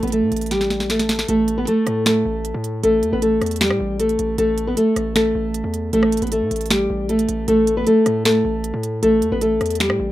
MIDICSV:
0, 0, Header, 1, 4, 480
1, 0, Start_track
1, 0, Tempo, 387097
1, 1593, Time_signature, 4, 2, 24, 8
1, 12548, End_track
2, 0, Start_track
2, 0, Title_t, "Nylon-string guitar"
2, 0, Program_c, 0, 24
2, 35, Note_on_c, 0, 71, 76
2, 45, Note_on_c, 0, 59, 57
2, 144, Note_off_c, 0, 71, 0
2, 150, Note_off_c, 0, 59, 0
2, 155, Note_on_c, 0, 69, 75
2, 166, Note_on_c, 0, 57, 62
2, 605, Note_off_c, 0, 69, 0
2, 611, Note_off_c, 0, 57, 0
2, 637, Note_on_c, 0, 67, 87
2, 647, Note_on_c, 0, 55, 70
2, 1087, Note_off_c, 0, 67, 0
2, 1092, Note_off_c, 0, 55, 0
2, 1114, Note_on_c, 0, 69, 81
2, 1124, Note_on_c, 0, 57, 66
2, 1565, Note_off_c, 0, 69, 0
2, 1570, Note_off_c, 0, 57, 0
2, 1594, Note_on_c, 0, 69, 100
2, 1604, Note_on_c, 0, 57, 79
2, 1932, Note_off_c, 0, 69, 0
2, 1938, Note_off_c, 0, 57, 0
2, 1955, Note_on_c, 0, 71, 84
2, 1964, Note_on_c, 0, 59, 62
2, 2064, Note_off_c, 0, 71, 0
2, 2069, Note_off_c, 0, 59, 0
2, 2077, Note_on_c, 0, 69, 83
2, 2086, Note_on_c, 0, 57, 71
2, 2527, Note_off_c, 0, 69, 0
2, 2532, Note_off_c, 0, 57, 0
2, 2556, Note_on_c, 0, 69, 85
2, 2565, Note_on_c, 0, 57, 66
2, 3465, Note_off_c, 0, 69, 0
2, 3470, Note_off_c, 0, 57, 0
2, 3513, Note_on_c, 0, 69, 98
2, 3524, Note_on_c, 0, 57, 78
2, 3852, Note_off_c, 0, 69, 0
2, 3858, Note_off_c, 0, 57, 0
2, 3878, Note_on_c, 0, 71, 82
2, 3888, Note_on_c, 0, 59, 63
2, 3986, Note_off_c, 0, 71, 0
2, 3989, Note_off_c, 0, 59, 0
2, 3994, Note_on_c, 0, 69, 79
2, 4003, Note_on_c, 0, 57, 64
2, 4445, Note_off_c, 0, 69, 0
2, 4450, Note_off_c, 0, 57, 0
2, 4472, Note_on_c, 0, 67, 85
2, 4482, Note_on_c, 0, 55, 72
2, 4924, Note_off_c, 0, 67, 0
2, 4929, Note_off_c, 0, 55, 0
2, 4952, Note_on_c, 0, 69, 78
2, 4962, Note_on_c, 0, 57, 64
2, 5404, Note_off_c, 0, 69, 0
2, 5409, Note_off_c, 0, 57, 0
2, 5434, Note_on_c, 0, 69, 101
2, 5444, Note_on_c, 0, 57, 78
2, 5772, Note_off_c, 0, 69, 0
2, 5778, Note_off_c, 0, 57, 0
2, 5795, Note_on_c, 0, 71, 80
2, 5805, Note_on_c, 0, 59, 65
2, 5904, Note_off_c, 0, 71, 0
2, 5910, Note_off_c, 0, 59, 0
2, 5915, Note_on_c, 0, 69, 89
2, 5924, Note_on_c, 0, 57, 61
2, 6366, Note_off_c, 0, 69, 0
2, 6370, Note_off_c, 0, 57, 0
2, 6391, Note_on_c, 0, 69, 91
2, 6401, Note_on_c, 0, 57, 67
2, 7303, Note_off_c, 0, 69, 0
2, 7308, Note_off_c, 0, 57, 0
2, 7353, Note_on_c, 0, 69, 102
2, 7362, Note_on_c, 0, 57, 80
2, 7692, Note_off_c, 0, 69, 0
2, 7697, Note_off_c, 0, 57, 0
2, 7716, Note_on_c, 0, 71, 75
2, 7726, Note_on_c, 0, 59, 58
2, 7825, Note_off_c, 0, 71, 0
2, 7829, Note_off_c, 0, 59, 0
2, 7834, Note_on_c, 0, 69, 76
2, 7845, Note_on_c, 0, 57, 63
2, 8285, Note_off_c, 0, 69, 0
2, 8291, Note_off_c, 0, 57, 0
2, 8316, Note_on_c, 0, 67, 90
2, 8326, Note_on_c, 0, 55, 68
2, 8766, Note_off_c, 0, 67, 0
2, 8771, Note_off_c, 0, 55, 0
2, 8794, Note_on_c, 0, 69, 82
2, 8803, Note_on_c, 0, 57, 69
2, 9245, Note_off_c, 0, 69, 0
2, 9250, Note_off_c, 0, 57, 0
2, 9274, Note_on_c, 0, 69, 100
2, 9284, Note_on_c, 0, 57, 77
2, 9612, Note_off_c, 0, 69, 0
2, 9618, Note_off_c, 0, 57, 0
2, 9634, Note_on_c, 0, 71, 85
2, 9644, Note_on_c, 0, 59, 61
2, 9744, Note_off_c, 0, 71, 0
2, 9749, Note_off_c, 0, 59, 0
2, 9755, Note_on_c, 0, 69, 82
2, 9764, Note_on_c, 0, 57, 70
2, 10206, Note_off_c, 0, 69, 0
2, 10211, Note_off_c, 0, 57, 0
2, 10234, Note_on_c, 0, 69, 84
2, 10244, Note_on_c, 0, 57, 64
2, 11144, Note_off_c, 0, 69, 0
2, 11149, Note_off_c, 0, 57, 0
2, 11191, Note_on_c, 0, 69, 101
2, 11202, Note_on_c, 0, 57, 79
2, 11531, Note_off_c, 0, 69, 0
2, 11536, Note_off_c, 0, 57, 0
2, 11556, Note_on_c, 0, 71, 80
2, 11567, Note_on_c, 0, 59, 66
2, 11665, Note_off_c, 0, 71, 0
2, 11669, Note_off_c, 0, 59, 0
2, 11674, Note_on_c, 0, 69, 78
2, 11683, Note_on_c, 0, 57, 64
2, 12125, Note_off_c, 0, 69, 0
2, 12130, Note_off_c, 0, 57, 0
2, 12152, Note_on_c, 0, 67, 85
2, 12162, Note_on_c, 0, 55, 71
2, 12548, Note_off_c, 0, 55, 0
2, 12548, Note_off_c, 0, 67, 0
2, 12548, End_track
3, 0, Start_track
3, 0, Title_t, "808-style bass"
3, 0, Program_c, 1, 38
3, 35, Note_on_c, 1, 33, 113
3, 275, Note_on_c, 1, 45, 100
3, 294, Note_off_c, 1, 33, 0
3, 389, Note_off_c, 1, 45, 0
3, 395, Note_on_c, 1, 33, 104
3, 1546, Note_off_c, 1, 33, 0
3, 1594, Note_on_c, 1, 33, 119
3, 2055, Note_off_c, 1, 33, 0
3, 2314, Note_on_c, 1, 45, 108
3, 2775, Note_off_c, 1, 45, 0
3, 2794, Note_on_c, 1, 33, 106
3, 3140, Note_off_c, 1, 33, 0
3, 3155, Note_on_c, 1, 45, 104
3, 3500, Note_off_c, 1, 45, 0
3, 3515, Note_on_c, 1, 33, 112
3, 3754, Note_on_c, 1, 40, 101
3, 3773, Note_off_c, 1, 33, 0
3, 3868, Note_off_c, 1, 40, 0
3, 3874, Note_on_c, 1, 33, 106
3, 4219, Note_off_c, 1, 33, 0
3, 4233, Note_on_c, 1, 40, 108
3, 4594, Note_on_c, 1, 45, 98
3, 4613, Note_off_c, 1, 40, 0
3, 4708, Note_off_c, 1, 45, 0
3, 4714, Note_on_c, 1, 33, 106
3, 5175, Note_off_c, 1, 33, 0
3, 5195, Note_on_c, 1, 33, 109
3, 5425, Note_off_c, 1, 33, 0
3, 5434, Note_on_c, 1, 33, 121
3, 5895, Note_off_c, 1, 33, 0
3, 6154, Note_on_c, 1, 33, 108
3, 6615, Note_off_c, 1, 33, 0
3, 6634, Note_on_c, 1, 33, 107
3, 6979, Note_off_c, 1, 33, 0
3, 6993, Note_on_c, 1, 40, 103
3, 7339, Note_off_c, 1, 40, 0
3, 7353, Note_on_c, 1, 33, 116
3, 7699, Note_off_c, 1, 33, 0
3, 7713, Note_on_c, 1, 33, 110
3, 7953, Note_on_c, 1, 45, 98
3, 7972, Note_off_c, 1, 33, 0
3, 8067, Note_off_c, 1, 45, 0
3, 8074, Note_on_c, 1, 33, 104
3, 8534, Note_off_c, 1, 33, 0
3, 8554, Note_on_c, 1, 33, 106
3, 9015, Note_off_c, 1, 33, 0
3, 9034, Note_on_c, 1, 33, 109
3, 9264, Note_off_c, 1, 33, 0
3, 9275, Note_on_c, 1, 33, 117
3, 9735, Note_off_c, 1, 33, 0
3, 9995, Note_on_c, 1, 45, 108
3, 10455, Note_off_c, 1, 45, 0
3, 10474, Note_on_c, 1, 33, 110
3, 10819, Note_off_c, 1, 33, 0
3, 10834, Note_on_c, 1, 45, 104
3, 11179, Note_off_c, 1, 45, 0
3, 11194, Note_on_c, 1, 33, 112
3, 11434, Note_on_c, 1, 40, 97
3, 11452, Note_off_c, 1, 33, 0
3, 11548, Note_off_c, 1, 40, 0
3, 11553, Note_on_c, 1, 33, 106
3, 11899, Note_off_c, 1, 33, 0
3, 11913, Note_on_c, 1, 40, 105
3, 12273, Note_on_c, 1, 45, 101
3, 12292, Note_off_c, 1, 40, 0
3, 12387, Note_off_c, 1, 45, 0
3, 12393, Note_on_c, 1, 33, 110
3, 12548, Note_off_c, 1, 33, 0
3, 12548, End_track
4, 0, Start_track
4, 0, Title_t, "Drums"
4, 33, Note_on_c, 9, 42, 54
4, 93, Note_off_c, 9, 42, 0
4, 93, Note_on_c, 9, 42, 43
4, 153, Note_off_c, 9, 42, 0
4, 153, Note_on_c, 9, 42, 81
4, 277, Note_off_c, 9, 42, 0
4, 393, Note_on_c, 9, 42, 60
4, 453, Note_off_c, 9, 42, 0
4, 453, Note_on_c, 9, 42, 62
4, 513, Note_off_c, 9, 42, 0
4, 513, Note_on_c, 9, 42, 59
4, 573, Note_off_c, 9, 42, 0
4, 573, Note_on_c, 9, 42, 60
4, 634, Note_off_c, 9, 42, 0
4, 634, Note_on_c, 9, 38, 58
4, 634, Note_on_c, 9, 42, 79
4, 754, Note_off_c, 9, 38, 0
4, 754, Note_on_c, 9, 38, 58
4, 758, Note_off_c, 9, 42, 0
4, 874, Note_off_c, 9, 38, 0
4, 874, Note_on_c, 9, 38, 72
4, 994, Note_off_c, 9, 38, 0
4, 994, Note_on_c, 9, 38, 70
4, 1113, Note_off_c, 9, 38, 0
4, 1113, Note_on_c, 9, 38, 91
4, 1113, Note_on_c, 9, 42, 66
4, 1234, Note_off_c, 9, 38, 0
4, 1234, Note_off_c, 9, 42, 0
4, 1234, Note_on_c, 9, 38, 83
4, 1234, Note_on_c, 9, 42, 68
4, 1353, Note_off_c, 9, 38, 0
4, 1353, Note_off_c, 9, 42, 0
4, 1353, Note_on_c, 9, 38, 105
4, 1353, Note_on_c, 9, 42, 68
4, 1473, Note_off_c, 9, 38, 0
4, 1473, Note_on_c, 9, 38, 90
4, 1477, Note_off_c, 9, 42, 0
4, 1593, Note_on_c, 9, 42, 81
4, 1597, Note_off_c, 9, 38, 0
4, 1717, Note_off_c, 9, 42, 0
4, 1834, Note_on_c, 9, 42, 75
4, 1958, Note_off_c, 9, 42, 0
4, 2074, Note_on_c, 9, 42, 84
4, 2198, Note_off_c, 9, 42, 0
4, 2314, Note_on_c, 9, 37, 73
4, 2314, Note_on_c, 9, 42, 76
4, 2438, Note_off_c, 9, 37, 0
4, 2438, Note_off_c, 9, 42, 0
4, 2554, Note_on_c, 9, 38, 118
4, 2554, Note_on_c, 9, 42, 79
4, 2563, Note_on_c, 9, 26, 95
4, 2678, Note_off_c, 9, 38, 0
4, 2678, Note_off_c, 9, 42, 0
4, 2687, Note_off_c, 9, 26, 0
4, 3035, Note_on_c, 9, 42, 79
4, 3159, Note_off_c, 9, 42, 0
4, 3274, Note_on_c, 9, 42, 69
4, 3398, Note_off_c, 9, 42, 0
4, 3515, Note_on_c, 9, 42, 82
4, 3639, Note_off_c, 9, 42, 0
4, 3755, Note_on_c, 9, 42, 72
4, 3879, Note_off_c, 9, 42, 0
4, 3994, Note_on_c, 9, 42, 86
4, 4118, Note_off_c, 9, 42, 0
4, 4234, Note_on_c, 9, 42, 47
4, 4235, Note_on_c, 9, 37, 71
4, 4295, Note_off_c, 9, 42, 0
4, 4295, Note_on_c, 9, 42, 56
4, 4355, Note_off_c, 9, 42, 0
4, 4355, Note_on_c, 9, 42, 64
4, 4359, Note_off_c, 9, 37, 0
4, 4414, Note_off_c, 9, 42, 0
4, 4414, Note_on_c, 9, 42, 74
4, 4475, Note_off_c, 9, 42, 0
4, 4475, Note_on_c, 9, 38, 115
4, 4475, Note_on_c, 9, 42, 81
4, 4484, Note_on_c, 9, 26, 96
4, 4594, Note_on_c, 9, 37, 106
4, 4599, Note_off_c, 9, 38, 0
4, 4599, Note_off_c, 9, 42, 0
4, 4608, Note_off_c, 9, 26, 0
4, 4718, Note_off_c, 9, 37, 0
4, 4955, Note_on_c, 9, 42, 80
4, 5074, Note_off_c, 9, 42, 0
4, 5074, Note_on_c, 9, 42, 48
4, 5195, Note_off_c, 9, 42, 0
4, 5195, Note_on_c, 9, 42, 70
4, 5319, Note_off_c, 9, 42, 0
4, 5435, Note_on_c, 9, 42, 80
4, 5559, Note_off_c, 9, 42, 0
4, 5674, Note_on_c, 9, 42, 73
4, 5798, Note_off_c, 9, 42, 0
4, 5915, Note_on_c, 9, 42, 86
4, 6039, Note_off_c, 9, 42, 0
4, 6154, Note_on_c, 9, 42, 73
4, 6155, Note_on_c, 9, 37, 71
4, 6278, Note_off_c, 9, 42, 0
4, 6279, Note_off_c, 9, 37, 0
4, 6394, Note_on_c, 9, 38, 118
4, 6394, Note_on_c, 9, 42, 83
4, 6403, Note_on_c, 9, 26, 93
4, 6518, Note_off_c, 9, 38, 0
4, 6518, Note_off_c, 9, 42, 0
4, 6527, Note_off_c, 9, 26, 0
4, 6874, Note_on_c, 9, 42, 78
4, 6998, Note_off_c, 9, 42, 0
4, 7114, Note_on_c, 9, 42, 69
4, 7238, Note_off_c, 9, 42, 0
4, 7354, Note_on_c, 9, 42, 83
4, 7473, Note_on_c, 9, 37, 100
4, 7478, Note_off_c, 9, 42, 0
4, 7594, Note_on_c, 9, 42, 74
4, 7597, Note_off_c, 9, 37, 0
4, 7654, Note_off_c, 9, 42, 0
4, 7654, Note_on_c, 9, 42, 65
4, 7713, Note_off_c, 9, 42, 0
4, 7713, Note_on_c, 9, 42, 54
4, 7773, Note_off_c, 9, 42, 0
4, 7773, Note_on_c, 9, 42, 43
4, 7833, Note_off_c, 9, 42, 0
4, 7833, Note_on_c, 9, 42, 86
4, 7957, Note_off_c, 9, 42, 0
4, 8073, Note_on_c, 9, 42, 63
4, 8134, Note_off_c, 9, 42, 0
4, 8134, Note_on_c, 9, 42, 61
4, 8194, Note_off_c, 9, 42, 0
4, 8194, Note_on_c, 9, 42, 60
4, 8254, Note_off_c, 9, 42, 0
4, 8254, Note_on_c, 9, 42, 61
4, 8314, Note_off_c, 9, 42, 0
4, 8314, Note_on_c, 9, 38, 115
4, 8314, Note_on_c, 9, 42, 83
4, 8323, Note_on_c, 9, 26, 94
4, 8438, Note_off_c, 9, 38, 0
4, 8438, Note_off_c, 9, 42, 0
4, 8447, Note_off_c, 9, 26, 0
4, 8794, Note_on_c, 9, 42, 65
4, 8915, Note_off_c, 9, 42, 0
4, 8915, Note_on_c, 9, 42, 66
4, 9034, Note_off_c, 9, 42, 0
4, 9034, Note_on_c, 9, 42, 71
4, 9158, Note_off_c, 9, 42, 0
4, 9274, Note_on_c, 9, 42, 83
4, 9398, Note_off_c, 9, 42, 0
4, 9514, Note_on_c, 9, 42, 74
4, 9638, Note_off_c, 9, 42, 0
4, 9754, Note_on_c, 9, 42, 85
4, 9878, Note_off_c, 9, 42, 0
4, 9994, Note_on_c, 9, 42, 76
4, 9995, Note_on_c, 9, 37, 71
4, 10118, Note_off_c, 9, 42, 0
4, 10119, Note_off_c, 9, 37, 0
4, 10234, Note_on_c, 9, 38, 115
4, 10234, Note_on_c, 9, 42, 85
4, 10244, Note_on_c, 9, 26, 91
4, 10358, Note_off_c, 9, 38, 0
4, 10358, Note_off_c, 9, 42, 0
4, 10368, Note_off_c, 9, 26, 0
4, 10714, Note_on_c, 9, 42, 78
4, 10838, Note_off_c, 9, 42, 0
4, 10954, Note_on_c, 9, 42, 72
4, 11078, Note_off_c, 9, 42, 0
4, 11194, Note_on_c, 9, 42, 79
4, 11318, Note_off_c, 9, 42, 0
4, 11433, Note_on_c, 9, 42, 73
4, 11557, Note_off_c, 9, 42, 0
4, 11674, Note_on_c, 9, 42, 84
4, 11798, Note_off_c, 9, 42, 0
4, 11914, Note_on_c, 9, 42, 46
4, 11915, Note_on_c, 9, 37, 72
4, 11974, Note_off_c, 9, 42, 0
4, 11974, Note_on_c, 9, 42, 54
4, 12034, Note_off_c, 9, 42, 0
4, 12034, Note_on_c, 9, 42, 63
4, 12039, Note_off_c, 9, 37, 0
4, 12094, Note_off_c, 9, 42, 0
4, 12094, Note_on_c, 9, 42, 74
4, 12154, Note_off_c, 9, 42, 0
4, 12154, Note_on_c, 9, 42, 82
4, 12155, Note_on_c, 9, 38, 119
4, 12164, Note_on_c, 9, 26, 93
4, 12274, Note_on_c, 9, 37, 107
4, 12278, Note_off_c, 9, 42, 0
4, 12279, Note_off_c, 9, 38, 0
4, 12288, Note_off_c, 9, 26, 0
4, 12398, Note_off_c, 9, 37, 0
4, 12548, End_track
0, 0, End_of_file